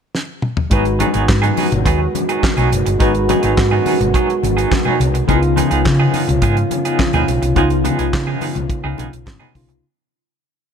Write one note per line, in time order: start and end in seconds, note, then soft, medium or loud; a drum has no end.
0.15 snare medium
0.42 mid tom medium
0.57 floor tom medium
0.70 1.03 G#1 loud
0.70 9.80 D#3 medium
0.70 0.91 F#3 medium
0.70 2.96 G#3 medium
0.70 5.25 G#3 medium
0.70 0.85 B3 medium
0.70 9.80 B3 medium
0.70 2.96 D#4 medium
0.70 0.85 D#4 medium
0.70 5.25 F#4 medium
0.70 2.96 F#4 medium
0.70 0.84 G#4 medium
0.70 2.97 B4 medium
0.70 kick loud
0.70 closed hi-hat medium
0.85 closed hi-hat soft
0.99 1.14 F#3 medium
0.99 1.13 B3 medium
0.99 1.13 D#4 medium
0.99 1.12 G#4 medium
0.99 closed hi-hat medium
0.99 muted conga soft
0.99 high conga medium
1.13 1.25 G#1 medium
1.13 1.26 F#3 medium
1.13 1.27 B3 medium
1.13 1.27 D#4 medium
1.13 1.27 G#4 medium
1.13 closed hi-hat soft
1.29 1.50 G#2 medium
1.29 kick loud
1.29 snare loud
1.29 clap medium
1.42 1.55 F#3 medium
1.42 1.56 B3 medium
1.42 1.56 D#4 medium
1.42 1.57 G#4 medium
1.42 closed hi-hat soft
1.42 high conga medium
1.56 1.72 F#3 soft
1.56 1.71 B3 medium
1.56 1.70 D#4 medium
1.56 1.70 G#4 medium
1.56 open hi-hat medium
1.56 muted conga soft
1.56 high conga medium
1.71 1.82 G#1 medium
1.71 muted clean electric guitar stroke medium
1.71 closed hi-hat soft
1.71 low conga medium
1.85 2.06 D#2 medium
1.85 2.05 F#3 medium
1.85 2.00 B3 medium
1.85 2.00 D#4 medium
1.85 1.99 G#4 medium
1.85 kick loud
1.85 closed hi-hat medium
1.85 muted conga soft
2.00 muted clean electric guitar stroke soft
2.15 muted clean electric guitar stroke soft
2.15 closed hi-hat medium
2.15 muted conga soft
2.15 high conga medium
2.29 2.41 F#3 soft
2.29 2.42 B3 medium
2.29 2.42 D#4 medium
2.29 2.43 G#4 medium
2.29 closed hi-hat soft
2.43 muted clean electric guitar stroke soft
2.43 kick loud
2.43 snare loud
2.43 clap medium
2.43 muted conga soft
2.43 high conga medium
2.57 2.68 B1 medium
2.57 2.70 F#3 medium
2.57 2.71 B3 medium
2.57 2.71 D#4 medium
2.57 2.71 G#4 medium
2.57 closed hi-hat soft
2.57 low conga medium
2.71 2.82 F#1 medium
2.71 muted clean electric guitar stroke soft
2.71 closed hi-hat medium
2.71 muted conga soft
2.71 low conga medium
2.86 2.96 G1 medium
2.86 muted clean electric guitar stroke soft
2.86 closed hi-hat medium
2.99 3.31 G#1 loud
2.99 3.19 F#3 medium
2.99 5.24 G#3 medium
2.99 3.15 B3 medium
2.99 5.24 D#4 medium
2.99 3.14 D#4 medium
2.99 5.25 F#4 medium
2.99 3.13 G#4 medium
2.99 5.26 B4 medium
2.99 kick loud
2.99 closed hi-hat medium
2.99 muted conga soft
3.15 closed hi-hat soft
3.29 3.43 F#3 medium
3.29 3.43 B3 medium
3.29 3.42 D#4 medium
3.29 3.42 G#4 medium
3.29 closed hi-hat medium
3.29 high conga medium
3.43 3.54 G#1 medium
3.43 3.56 F#3 medium
3.43 3.57 B3 medium
3.43 3.57 D#4 medium
3.43 3.57 G#4 medium
3.43 closed hi-hat soft
3.57 3.78 G#2 medium
3.57 kick loud
3.57 snare loud
3.57 clap loud
3.57 muted conga soft
3.71 3.85 F#3 medium
3.71 3.85 B3 medium
3.71 3.86 D#4 medium
3.71 3.86 G#4 medium
3.71 high conga medium
3.86 4.01 F#3 medium
3.86 4.00 B3 medium
3.86 3.99 D#4 medium
3.86 3.99 G#4 medium
3.86 open hi-hat medium
3.86 muted conga soft
3.86 high conga medium
4.00 4.11 G#1 medium
4.00 muted clean electric guitar stroke soft
4.00 closed hi-hat soft
4.00 low conga medium
4.14 4.33 F#3 medium
4.14 4.28 B3 medium
4.14 4.28 D#4 medium
4.14 4.27 G#4 medium
4.14 kick loud
4.14 closed hi-hat medium
4.28 muted clean electric guitar stroke medium
4.28 closed hi-hat soft
4.43 4.64 G#1 medium
4.43 muted clean electric guitar stroke soft
4.43 closed hi-hat medium
4.43 high conga medium
4.57 4.70 F#3 soft
4.57 4.71 B3 soft
4.57 4.71 D#4 medium
4.57 4.71 G#4 medium
4.57 closed hi-hat soft
4.71 muted clean electric guitar stroke soft
4.71 kick loud
4.71 snare loud
4.71 clap medium
4.71 muted conga soft
4.71 high conga medium
4.85 4.99 F#3 medium
4.85 4.99 B3 medium
4.85 5.00 D#4 medium
4.85 5.00 G#4 medium
4.85 low conga medium
5.00 5.21 C2 medium
5.00 muted clean electric guitar stroke soft
5.00 closed hi-hat medium
5.00 low conga medium
5.14 muted clean electric guitar stroke soft
5.14 closed hi-hat medium
5.28 5.60 C#2 loud
5.28 7.52 C#3 medium
5.28 5.47 F3 medium
5.28 7.52 B3 medium
5.28 5.42 B3 medium
5.28 9.79 C#4 medium
5.28 5.42 D#4 medium
5.28 7.53 D#4 medium
5.28 5.36 E4 medium
5.28 9.79 F4 medium
5.28 5.41 G#4 medium
5.28 kick medium
5.28 closed hi-hat medium
5.37 7.56 F4 medium
5.43 muted clean electric guitar stroke soft
5.43 closed hi-hat soft
5.56 5.71 F3 medium
5.56 5.71 B3 medium
5.56 5.70 D#4 medium
5.56 5.70 G#4 medium
5.56 closed hi-hat medium
5.56 high conga medium
5.71 5.82 C#2 medium
5.71 5.84 F3 medium
5.71 5.84 B3 medium
5.71 5.85 D#4 medium
5.71 5.85 G#4 medium
5.71 closed hi-hat soft
5.85 6.06 C#3 medium
5.85 muted clean electric guitar stroke soft
5.85 kick loud
5.85 snare loud
5.85 clap loud
5.85 muted conga soft
6.00 6.12 F3 medium
6.00 6.13 B3 medium
6.00 6.14 D#4 medium
6.00 6.14 G#4 medium
6.00 high conga medium
6.13 6.29 F3 medium
6.13 6.28 B3 medium
6.13 6.27 D#4 medium
6.13 6.26 G#4 medium
6.13 open hi-hat medium
6.13 muted conga soft
6.13 high conga medium
6.28 6.39 C#2 medium
6.28 muted clean electric guitar stroke soft
6.28 closed hi-hat soft
6.28 low conga medium
6.42 6.63 G#2 medium
6.42 6.61 F3 medium
6.42 6.57 B3 medium
6.42 6.56 D#4 medium
6.42 6.56 G#4 loud
6.42 kick loud
6.42 closed hi-hat medium
6.57 muted clean electric guitar stroke soft
6.57 closed hi-hat soft
6.71 muted clean electric guitar stroke soft
6.71 closed hi-hat medium
6.71 high conga medium
6.85 6.98 F3 soft
6.85 6.99 B3 medium
6.85 6.99 D#4 medium
6.85 6.99 G#4 medium
6.85 closed hi-hat soft
6.99 muted clean electric guitar stroke soft
6.99 kick loud
6.99 snare loud
6.99 clap medium
6.99 muted conga soft
6.99 high conga medium
7.13 7.24 D#2 loud
7.13 7.27 F3 medium
7.13 7.27 B3 medium
7.13 7.28 D#4 medium
7.13 7.28 G#4 medium
7.13 closed hi-hat soft
7.13 low conga medium
7.28 7.38 B1 medium
7.28 muted clean electric guitar stroke soft
7.28 closed hi-hat medium
7.28 muted conga soft
7.28 low conga medium
7.42 7.52 C2 medium
7.42 muted clean electric guitar stroke soft
7.42 closed hi-hat medium
7.55 7.87 C#2 loud
7.55 9.50 C#3 medium
7.55 7.75 F3 medium
7.55 9.51 B3 medium
7.55 7.70 B3 medium
7.55 9.51 D#4 medium
7.55 7.70 D#4 medium
7.55 9.52 F4 medium
7.55 7.69 G#4 loud
7.55 kick loud
7.55 closed hi-hat medium
7.55 muted conga soft
7.70 muted clean electric guitar stroke soft
7.70 closed hi-hat soft
7.84 7.99 F3 medium
7.84 7.98 B3 medium
7.84 7.98 D#4 medium
7.84 7.97 G#4 medium
7.84 closed hi-hat medium
7.84 muted conga soft
7.84 high conga medium
7.99 8.09 C#2 medium
7.99 8.12 F3 medium
7.99 8.12 B3 medium
7.99 8.13 D#4 medium
7.99 8.13 G#4 medium
7.99 closed hi-hat soft
8.13 8.34 C#3 medium
8.13 muted clean electric guitar stroke soft
8.13 kick loud
8.13 snare loud
8.13 clap loud
8.27 8.40 F3 medium
8.27 8.40 B3 medium
8.27 8.41 D#4 medium
8.27 8.41 G#4 medium
8.27 high conga medium
8.41 8.56 F3 medium
8.41 8.56 B3 medium
8.41 8.55 D#4 medium
8.41 8.54 G#4 medium
8.41 open hi-hat medium
8.41 muted conga soft
8.41 high conga medium
8.55 8.66 C#2 medium
8.55 muted clean electric guitar stroke medium
8.55 closed hi-hat soft
8.55 low conga medium
8.70 muted clean electric guitar stroke soft
8.70 kick loud
8.70 closed hi-hat medium
8.84 8.94 C#2 medium
8.84 8.96 F3 medium
8.84 8.97 B3 medium
8.84 8.98 D#4 medium
8.84 8.98 G#4 medium
8.97 9.09 B1 medium
8.97 9.13 F3 medium
8.97 9.12 B3 medium
8.97 9.12 D#4 medium
8.97 9.11 G#4 medium
8.97 closed hi-hat medium
8.97 high conga medium
9.13 9.23 B1 medium
9.13 closed hi-hat soft
9.26 9.37 G#1 medium
9.26 muted clean electric guitar stroke soft
9.26 kick loud
9.26 snare loud
9.26 clap medium
9.26 high conga medium
9.39 9.53 F3 medium
9.39 9.53 B3 medium
9.39 9.54 D#4 medium
9.39 9.54 G#4 medium
9.39 low conga medium
9.55 9.69 B1 medium
9.55 9.83 C#3 medium
9.55 9.84 B3 medium
9.55 9.84 D#4 soft
9.55 9.84 F4 medium
9.55 kick medium
9.55 open hi-hat medium
9.55 muted conga soft
9.55 low conga medium
9.69 9.79 C2 medium
9.69 muted clean electric guitar stroke soft
9.69 closed hi-hat medium